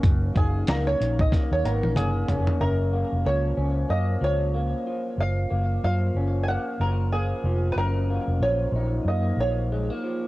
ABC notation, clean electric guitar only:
X:1
M:4/4
L:1/16
Q:"Swing 16ths" 1/4=93
K:F#
V:1 name="Clean electric guitar"
[F,,D,A,C]2 D,2 A,2 D,2 A,2 B, C A,2 C2 | F,,2 A,2 E,2 C2 A,2 E,2 A,2 E,2- | E,2 A,2 E,2 C2 A,2 E,2 A,2 E,2 | F,,2 A,2 E,2 D2 A,2 E,2 G, A, E,2 |]